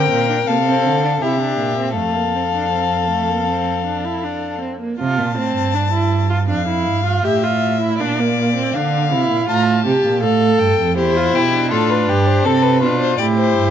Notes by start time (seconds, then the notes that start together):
Already playing: C4 A#4 G5
0.11 A#2
0.30 D4
0.47 C3 A#3 A4 F5
0.67 C4
0.85 D3
1.04 D4
1.21 C3 E4 G4 E5
1.41 D4
1.59 A#2
1.78 C4
1.96 F2 A3 A4 F5
2.16 A#3
2.35 C4
2.54 D4
2.72 C4
3.10 A3
3.29 A#3
3.48 C4
3.86 D4
4.05 E4
4.23 D4
4.61 C4
4.81 A#3
4.99 C3 F4 A5
5.19 A#2
5.37 A2 C4
5.56 G2
5.74 D4
5.92 E4
6.30 F4
6.49 F2 D4 F5
6.68 E4
6.88 G2
7.05 F4
7.24 A2 G4 E5
7.43 F4
7.81 E4
7.98 A#2 D4 D5
8.19 A#3
8.56 C4
8.73 D3 D4 F5
9.11 C3 E4
9.30 A#2
9.48 A2 F4 A5
9.55 A#5
9.62 A5
9.85 C3 G4
10.04 A#2
10.22 A2 A4 F5
10.59 G2 G5
10.78 F2
10.97 E2 E4 G4 C5
11.16 F4
11.35 B2 E4 G4
11.52 D4
11.71 A2 F4 A4
11.90 B4
12.08 G2 G4
12.26 C5
12.45 C3 C4 A4
12.63 B4
12.82 B2 D4 F4
13.00 C5
13.18 A2 E4 G4 D5
13.37 C5
13.57 G2